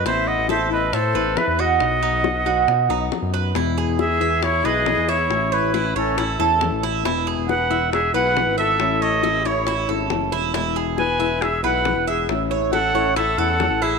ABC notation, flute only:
X:1
M:4/4
L:1/8
Q:1/4=137
K:E
V:1 name="Flute"
e f e d =c2 e f- | f6 z2 | z2 G2 E G2 E- | E E2 C2 z3 |
z2 B2 G B2 A- | A A2 E2 z3 | z2 B2 G B2 G | z2 A2 A A2 G |]